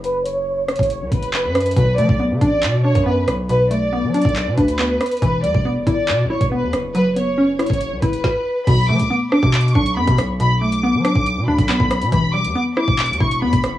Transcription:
Already playing: 808-style bass F#1
0.04 violin section B4, closed hi-hat
0.26 violin section C#5, closed hi-hat
0.69 violin section C#5, cross-stick, closed hi-hat
0.76 808-style bass F#1, kick, closed hi-hat
0.83 closed hi-hat
0.90 closed hi-hat
1.01 808-style bass C#2
1.12 808-style bass F#1, violin section B4, kick, closed hi-hat
1.23 closed hi-hat
1.34 clap
1.44 808-style bass F#2
1.55 cross-stick, closed hi-hat, open hi-hat
1.60 closed hi-hat
1.66 closed hi-hat
1.71 closed hi-hat
1.76 808-style bass B1, synth pluck B2, violin section B4, kick, closed hi-hat
1.98 808-style bass F#3, synth pluck A3, violin section D5, closed hi-hat
2.09 808-style bass B1, kick
2.20 synth pluck B3
2.31 808-style bass D3
2.41 808-style bass A1, synth pluck D4, violin section D5, kick, closed hi-hat
2.63 808-style bass B2, clap, closed hi-hat
2.84 synth pluck D4, violin section C#5
2.95 808-style bass F#2, kick, closed hi-hat
3.06 synth pluck B3, violin section B4
3.28 808-style bass B1, cross-stick, closed hi-hat
3.49 synth pluck B2, violin section B4, closed hi-hat
3.71 synth pluck A3, violin section D5, closed hi-hat
3.93 synth pluck B3
4.03 808-style bass F#3
4.14 synth pluck D4, violin section D5, closed hi-hat
4.21 808-style bass B1, kick, closed hi-hat
4.29 closed hi-hat
4.36 clap, closed hi-hat
4.47 808-style bass B2
4.57 808-style bass D2, synth pluck D4, violin section B4, kick, closed hi-hat
4.68 closed hi-hat
4.79 synth pluck B3, clap
5.00 cross-stick, closed hi-hat
5.06 closed hi-hat
5.11 closed hi-hat
5.17 closed hi-hat
5.22 808-style bass E1, synth pluck E3, violin section B4, kick, closed hi-hat
5.44 808-style bass E2, synth pluck G3, violin section D5, closed hi-hat
5.54 808-style bass E1, kick
5.65 synth pluck B3
5.76 808-style bass G1
5.87 808-style bass G1, synth pluck E4, violin section D5, kick, closed hi-hat
6.08 808-style bass B2, clap, closed hi-hat
6.25 808-style bass G1
6.30 synth pluck E4, violin section C#5
6.41 808-style bass E1, kick, closed hi-hat
6.51 synth pluck B3, violin section B4
6.62 808-style bass E2
6.73 808-style bass F#1, cross-stick, closed hi-hat
6.95 synth pluck F#3, violin section B4, closed hi-hat
7.16 synth pluck B3, violin section C#5, closed hi-hat
7.38 synth pluck C#4
7.59 synth pluck E4, violin section C#5, cross-stick, closed hi-hat
7.67 808-style bass F#1, kick, closed hi-hat
7.74 closed hi-hat
7.81 closed hi-hat
7.92 808-style bass C#2
8.02 808-style bass F#1, synth pluck E4, violin section B4, kick, closed hi-hat
8.13 closed hi-hat
8.24 kick, snare
8.67 808-style bass B1, synth pluck B2, violin section B5, kick, closed hi-hat, crash
8.89 808-style bass F#3, synth pluck A3, violin section D6
9.00 808-style bass B1, closed hi-hat
9.10 synth pluck B3
9.32 synth pluck D4, violin section D6, cross-stick
9.43 808-style bass B2, kick
9.54 clap, closed hi-hat
9.61 closed hi-hat
9.68 closed hi-hat
9.75 808-style bass B1, synth pluck D4, violin section C#6, kick
9.86 closed hi-hat
9.97 808-style bass F#2, synth pluck B3, violin section B5
10.07 808-style bass B2, kick, closed hi-hat
10.18 808-style bass B1, cross-stick, closed hi-hat
10.40 synth pluck B2, violin section B5, closed hi-hat
10.61 synth pluck A3, violin section D6
10.72 closed hi-hat
10.83 synth pluck B3
10.94 808-style bass F#3
11.04 synth pluck D4, violin section D6, cross-stick, closed hi-hat
11.15 808-style bass B1, kick
11.26 closed hi-hat
11.37 808-style bass B2
11.48 808-style bass D2, synth pluck D4, violin section B5
11.59 808-style bass B1, kick, closed hi-hat
11.69 synth pluck B3, clap
11.80 808-style bass B1, kick
11.91 cross-stick, closed hi-hat
12.02 808-style bass B2, closed hi-hat
12.12 808-style bass E1, synth pluck E3, violin section B5, kick, closed hi-hat
12.34 synth pluck G3, violin section D6
12.45 808-style bass E2, closed hi-hat
12.56 synth pluck B3
12.77 synth pluck E4, violin section D6, cross-stick
12.88 808-style bass E1, kick
12.99 clap, closed hi-hat
13.06 808-style bass E2, closed hi-hat
13.13 closed hi-hat
13.20 808-style bass E1, synth pluck E4, violin section C#6, kick
13.31 closed hi-hat
13.42 808-style bass E2, synth pluck B3, violin section B5
13.53 808-style bass E1, kick, closed hi-hat
13.64 808-style bass F#1, cross-stick, closed hi-hat

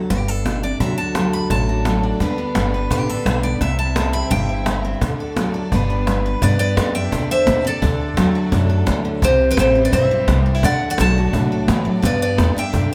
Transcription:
0.02 cajon slap
0.10 upright bass G1, steel-string acoustic guitar G2 G4, cajon bass, cajon slap
0.28 steel-string acoustic guitar D4 A4, cajon slap
0.45 steel-string acoustic guitar B2, cajon slap
0.63 steel-string acoustic guitar C3 D5, cajon slap
0.80 upright bass D2, steel-string acoustic guitar D3 F#3 D4 F#4 A4 E5, violin section A3 D4 F#4 A4 D5, cajon bass, cajon slap
0.98 steel-string acoustic guitar F#4 A5, cajon slap
1.15 steel-string acoustic guitar F#3, cajon slap
1.33 steel-string acoustic guitar A4 B5, cajon slap
1.42 cajon slap
1.50 upright bass A1, steel-string acoustic guitar A2 A5, cajon bass, cajon slap
1.68 steel-string acoustic guitar F#4, cajon slap
1.85 steel-string acoustic guitar F#3, cajon slap
2.03 steel-string acoustic guitar D4, cajon slap
2.12 cajon slap
2.20 upright bass D2, steel-string acoustic guitar D3 G3 B3 D4 B4, violin section G3 B3 B4, cajon bass, cajon slap
2.38 steel-string acoustic guitar D4, cajon slap
2.55 upright bass G1, steel-string acoustic guitar G3, cajon slap
2.73 steel-string acoustic guitar B4, cajon slap
2.91 upright bass A1, steel-string acoustic guitar D3 G4, cajon bass, cajon slap
3.09 steel-string acoustic guitar D4 A4, cajon slap
3.26 upright bass B1, steel-string acoustic guitar G3, cajon slap
3.43 steel-string acoustic guitar B3 D5, cajon slap
3.61 upright bass C2, steel-string acoustic guitar C3 E5, violin section C4 E4 C5 E5, cajon bass, cajon slap
3.79 steel-string acoustic guitar E4 A5, cajon slap
3.96 steel-string acoustic guitar G3, cajon slap
4.13 steel-string acoustic guitar G4 B5, cajon slap
4.22 cajon slap
4.30 upright bass G1, steel-string acoustic guitar G2 G5, cajon bass, cajon slap
4.49 steel-string acoustic guitar E4, cajon slap
4.66 steel-string acoustic guitar G3, cajon slap
4.84 steel-string acoustic guitar C4, cajon slap
4.93 cajon slap
5.01 upright bass D2, steel-string acoustic guitar D3, violin section A3 D4 F#4 A4 D5, cajon bass, cajon slap
5.19 steel-string acoustic guitar A4, cajon slap
5.36 steel-string acoustic guitar F#3, cajon slap
5.54 steel-string acoustic guitar A4, cajon slap
5.71 upright bass G1, violin section G3 B3 B4, steel-string acoustic guitar G3 B3 D4, cajon bass, cajon slap
5.75 steel-string acoustic guitar B4
5.90 steel-string acoustic guitar D4, cajon slap
6.07 steel-string acoustic guitar G3, cajon slap
6.25 steel-string acoustic guitar B4, cajon slap
6.42 upright bass G2, steel-string acoustic guitar B3 B4 D5, violin section D4 G4 D5, cajon bass, cajon slap
6.59 steel-string acoustic guitar B4 D5, cajon slap
6.77 upright bass F#2, cajon slap
6.95 steel-string acoustic guitar D4 E5 G5, cajon slap
7.04 cajon slap
7.12 upright bass E2, steel-string acoustic guitar D3, cajon bass, cajon slap
7.30 steel-string acoustic guitar C5 E5, cajon slap
7.47 upright bass D#2, steel-string acoustic guitar B2, cajon slap
7.65 steel-string acoustic guitar C3 A4 D5, cajon slap
7.73 cajon slap
7.82 upright bass D2, steel-string acoustic guitar D3 D4, violin section A3 F#4 A4, cajon bass, cajon slap
8.00 cajon slap
8.17 upright bass E2, steel-string acoustic guitar F#3, cajon slap
8.34 steel-string acoustic guitar F#4, cajon slap
8.44 cajon slap
8.52 upright bass F#2, steel-string acoustic guitar A2 D4, cajon bass, cajon slap
8.69 steel-string acoustic guitar A4, cajon slap
8.86 upright bass D2, steel-string acoustic guitar E3, cajon slap
9.05 steel-string acoustic guitar D3, cajon slap
9.13 cajon slap
9.22 upright bass C2, steel-string acoustic guitar C3 C4 G4 C5, violin section G3 C4 E4 G4 C5, cajon bass, cajon slap
9.40 cajon slap
9.51 steel-string acoustic guitar G4 B4
9.57 upright bass A1, steel-string acoustic guitar G3 G4 C5, cajon slap
9.75 steel-string acoustic guitar E4, cajon slap
9.85 steel-string acoustic guitar B4 D5
9.92 upright bass B1, steel-string acoustic guitar G2 C4 C5 E5, cajon bass, cajon slap
10.10 steel-string acoustic guitar G4, cajon slap
10.27 upright bass C2, steel-string acoustic guitar G3, cajon slap
10.46 steel-string acoustic guitar D4 D5, cajon slap
10.55 steel-string acoustic guitar E4
10.62 upright bass D2, steel-string acoustic guitar D3 D4 D5 F#5, violin section A3 D4 F#4 A4 D5, cajon bass, cajon slap
10.81 cajon slap
10.90 steel-string acoustic guitar D5 F#5
10.98 upright bass B1, steel-string acoustic guitar F#3 F#5 A5, cajon slap
11.16 steel-string acoustic guitar F#4, cajon slap
11.33 upright bass C2, steel-string acoustic guitar A2 D4, cajon bass, cajon slap
11.51 steel-string acoustic guitar A4, cajon slap
11.68 upright bass D2, steel-string acoustic guitar E3, cajon slap
11.85 steel-string acoustic guitar F#3, muted upright bass stroke, cajon slap
11.95 cajon slap
12.02 steel-string acoustic guitar G2 B3 B4 D5, upright bass G2, violin section G4, cajon bass, cajon slap
12.21 steel-string acoustic guitar B4 D5, cajon slap
12.38 upright bass E2, cajon slap
12.56 steel-string acoustic guitar D4 E5 G5, muted upright bass stroke, cajon slap
12.65 cajon slap
12.73 upright bass F#2, steel-string acoustic guitar D3, cajon bass, cajon slap
12.91 cajon slap

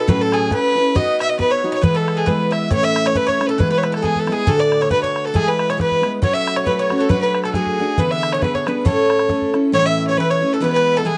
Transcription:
0.00 fiddle A4
0.08 steel-string acoustic guitar A2 F#3 C#4 E4 A4, bouzouki B4, fiddle B4, bodhran
0.21 bouzouki A4, fiddle A4
0.32 fiddle G#4, bouzouki G#4, bodhran
0.50 steel-string acoustic guitar F#3 C#4 E4 A4, bouzouki B4, fiddle B4, bodhran
0.75 steel-string acoustic guitar C#4 E4 A4
0.95 steel-string acoustic guitar B3 D#4 F#4 B4, bouzouki D#5, fiddle D#5, bodhran
1.20 fiddle E5, bouzouki E5, bodhran
1.29 fiddle D#5, bouzouki D#5
1.39 steel-string acoustic guitar B3 D#4 F#4 B4, bouzouki B4, fiddle B4, bodhran
1.50 bouzouki C#5, fiddle C#5
1.63 steel-string acoustic guitar D#4 F#4 B4
1.72 bouzouki C#5, fiddle C#5
1.81 steel-string acoustic guitar E3 G#3 B3 E4, bouzouki B4, fiddle B4, bodhran
1.95 bouzouki A4, fiddle A4
2.08 bodhran
2.17 bouzouki G#4, fiddle G#4
2.26 steel-string acoustic guitar E3 G#3 B3 E4, bouzouki B4, fiddle B4, bodhran
2.51 bouzouki E5, fiddle E5, bodhran
2.71 steel-string acoustic guitar A2 E3 A3 C#4 E4, bouzouki C#5, fiddle C#5, bodhran
2.83 bouzouki E5, fiddle E5
2.96 bodhran
3.06 bouzouki C#5, fiddle C#5, bodhran
3.15 steel-string acoustic guitar E3 A3 C#4 E4, bouzouki B4, fiddle B4, bodhran
3.27 bouzouki C#5, fiddle C#5, bodhran
3.39 steel-string acoustic guitar A3 C#4 E4, bodhran
3.46 bouzouki A4, fiddle A4 B4
3.58 steel-string acoustic guitar E3 G#3 B3 E4, bouzouki B4, fiddle B4, bodhran
3.70 bouzouki B4, fiddle B4
3.78 fiddle C#5
3.83 bouzouki B4, fiddle B4, bodhran
3.92 bouzouki A4, fiddle A4, bodhran
4.02 steel-string acoustic guitar E3 G#3 B3 E4, bouzouki G#4, fiddle G#4, bodhran
4.16 fiddle A4, bodhran
4.27 steel-string acoustic guitar G#3 B3 E4, bodhran
4.32 bouzouki G#4, fiddle G#4
4.47 steel-string acoustic guitar D2 A2 D3 A3 D4 F#4, bouzouki A4, fiddle A4, bodhran
4.59 bouzouki D5, fiddle D5
4.72 bodhran
4.81 bouzouki C#5, fiddle C#5, bodhran
4.89 steel-string acoustic guitar D3 A3 D4 F#4, bouzouki B4, fiddle B4, bodhran
5.03 fiddle C#5, bouzouki C#5, bodhran
5.16 bodhran
5.25 fiddle A4, bouzouki A4
5.34 steel-string acoustic guitar E3 G#3 B3 E4, fiddle G#4, bouzouki G#4, bodhran
5.47 fiddle B4, bouzouki B4
5.59 bodhran
5.70 bouzouki C#5, fiddle C#5, bodhran
5.77 steel-string acoustic guitar E3 G#3 B3 E4, bouzouki B4, bodhran
5.81 fiddle B4
5.91 bodhran
6.02 steel-string acoustic guitar G#3 B3 E4, bodhran
6.22 steel-string acoustic guitar F#3 A3 C#4 F#4, fiddle C#5, bouzouki C#5, bodhran
6.34 fiddle E5, bouzouki E5
6.47 bodhran
6.56 fiddle C#5, bouzouki C#5, bodhran
6.64 steel-string acoustic guitar F#3 A3 C#4 F#4, fiddle B4 C#5, bouzouki B4, bodhran
6.78 fiddle C#5, bouzouki C#5
6.90 steel-string acoustic guitar A3 C#4 F#4, bodhran
6.98 fiddle A4, bouzouki A4 B4
7.09 steel-string acoustic guitar F#3 A3 D4 F#4, fiddle B4, bouzouki B4, bodhran
7.21 fiddle B4, bouzouki B4
7.34 bodhran
7.43 fiddle A4, bouzouki A4, bodhran
7.54 steel-string acoustic guitar F#3 A3 D4 F#4, fiddle G#4, bouzouki G#4, bodhran
7.67 bodhran
7.79 steel-string acoustic guitar A3 D4 F#4
7.98 steel-string acoustic guitar D3 E3 B3 D4 G#4, fiddle B4, bouzouki B4, bodhran
8.11 fiddle E5, bouzouki E5
8.23 bodhran
8.32 fiddle C#5, bouzouki C#5, bodhran
8.41 steel-string acoustic guitar D3 B3 D4 G#4, fiddle B4, bouzouki B4, bodhran
8.54 fiddle C#5, bouzouki C#5, bodhran
8.66 steel-string acoustic guitar B3 D4 G#4, fiddle B4, bouzouki B4, bodhran
8.85 steel-string acoustic guitar A2 A3 C#4 E4 A4, fiddle C#5, bouzouki C#5, bodhran
9.10 bodhran
9.19 bodhran
9.29 steel-string acoustic guitar A3 C#4 E4 A4, bodhran
9.42 bodhran
9.53 steel-string acoustic guitar C#4 E4 A4, bodhran
9.72 steel-string acoustic guitar A2 E3 A3 C#4 E4, fiddle C#5, bouzouki C#5
9.86 fiddle E5, bouzouki E5
10.07 fiddle C#5, bouzouki C#5
10.17 steel-string acoustic guitar E3 A3 C#4 E4, fiddle B4, bouzouki B4
10.30 fiddle C#5, bouzouki C#5
10.41 steel-string acoustic guitar A3 C#4 E4
10.53 fiddle A4, bouzouki A4
10.60 steel-string acoustic guitar E3 G#3 B3 E4, fiddle B4, bouzouki B4
10.73 fiddle B4, bouzouki B4
10.97 bouzouki A4, fiddle A4
11.04 steel-string acoustic guitar E3 G#3 B3 E4, fiddle G#4, bouzouki G#4

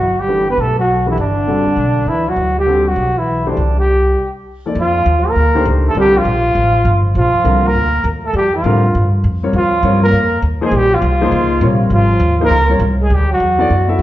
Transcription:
Already playing: upright bass G1, trombone F#3, muted trumpet F#4
0.19 trombone G3, muted trumpet G4
0.28 grand piano E3 A3 D4 G4 B4
0.49 trombone B3, muted trumpet B4
0.57 upright bass B1, trombone A3, muted trumpet A4
0.77 trombone F#3, muted trumpet F#4
1.06 grand piano E3 A3 D4 G4 B4, trombone E3
1.10 muted trumpet E4
1.17 upright bass G1, trombone D3, muted trumpet D4
1.47 grand piano D3 G3 C4 F#4 A4
1.65 muted upright bass stroke
1.76 upright bass B1
2.06 upright bass D2, trombone E3, muted trumpet E4
2.27 trombone F#3, muted trumpet F#4
2.36 upright bass D2
2.56 trombone G3, muted trumpet G4
2.67 grand piano D3 G3 C4 F#4 A4
2.87 trombone F#3, muted trumpet F#4
2.96 upright bass B1
3.17 trombone E3, muted trumpet E4
3.46 trombone D3, grand piano E3 A3 D4 G4 C5, muted trumpet D4
3.57 upright bass C2
3.76 trombone G3, muted trumpet G4
4.66 grand piano F3 A#3 D#4 A4 D5
4.75 upright bass F2
4.80 trombone F3, muted trumpet F4
5.06 upright bass D#2
5.28 trombone A#3, muted trumpet A#4
5.35 upright bass D2
5.54 grand piano D#3 A3 D4 G4 C5
5.65 upright bass C#2
5.87 trombone A3, muted trumpet A4
5.95 upright bass C2, grand piano D3 G3 C4 F4 A#4, trombone G3
6.00 muted trumpet G4
6.18 trombone F3, muted trumpet F4
6.25 upright bass A#1
6.55 upright bass A1
6.85 upright bass G1
7.15 upright bass A#1, trombone F3, muted trumpet F4
7.34 muted upright bass stroke
7.44 upright bass C2, grand piano D3 G3 C4 F4 A#4
7.64 trombone A#3, muted trumpet A#4
7.75 upright bass D2
8.04 upright bass D#2
8.23 trombone A3, muted trumpet A4
8.33 upright bass F2, trombone G3, muted trumpet G4
8.53 trombone F3, muted trumpet F4
8.64 upright bass A2, grand piano D3 G3 C4 F4 A#4
8.95 upright bass G2
9.24 upright bass F2
9.43 grand piano G3 C4 F4 A#4 C#5
9.53 upright bass D#2, trombone F3, muted trumpet F4
9.83 upright bass G2, grand piano G3 C4 F4 A#4 C#5
10.03 trombone A#3, muted trumpet A#4
10.12 upright bass F2
10.42 upright bass D#2
10.61 grand piano F3 A#3 D#4 G#4 C5, trombone G#3, muted trumpet G#4
10.71 upright bass A#1, trombone G3
10.77 muted trumpet G4
10.93 trombone F3, muted trumpet F4
11.02 upright bass C2
11.21 grand piano F3 A#3 D#4 G#4 C5
11.32 upright bass C#2
11.61 upright bass A#1, grand piano C3 G3 F4 A#4 C#5
11.90 upright bass G#1, trombone F3, muted trumpet F4
12.20 upright bass D#2
12.40 grand piano F3 A#3 D#4 G#4 C5, trombone A#3
12.44 muted trumpet A#4
12.50 upright bass C#2
12.69 grand piano G3 C4 F4 A#4 C#5
12.79 upright bass C2
13.01 trombone G#3, muted trumpet G#4
13.10 upright bass D2, trombone G3
13.15 muted trumpet G4
13.30 trombone F#3, muted trumpet F#4
13.40 upright bass E2
13.59 grand piano F#3 B3 E4 A4 D5
13.70 upright bass F#2
13.88 grand piano F#3 B3 E4 A4 E5
13.99 upright bass G#2

